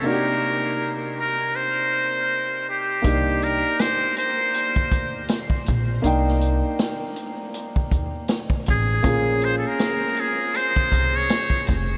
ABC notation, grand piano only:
X:1
M:4/4
L:1/8
Q:"Swing 16ths" 1/4=80
K:Cm
V:1 name="Grand piano"
[C,B,DE^FG]8 | [B,DEG]8 | [B,DEg]8 | [B,_DFA]8 |]